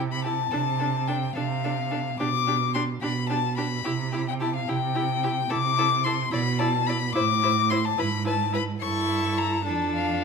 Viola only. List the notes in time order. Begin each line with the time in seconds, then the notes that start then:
0.26 E4
0.53 D4
0.81 D4
1.08 D4
1.36 D4
1.65 D4
1.92 D4
2.20 D4
2.48 D4
2.75 D4
3.03 D4
3.30 D4
3.58 D4
3.85 E4
4.13 E4
4.42 E4
4.68 E4
4.96 E4
5.23 E4
5.50 E4
5.78 E4
6.05 E4
6.32 E4
6.60 E4
6.88 E4
7.15 E4
7.43 E4
7.70 E4
7.98 E4
8.25 E4
8.53 E4
8.80 E4
9.66 D4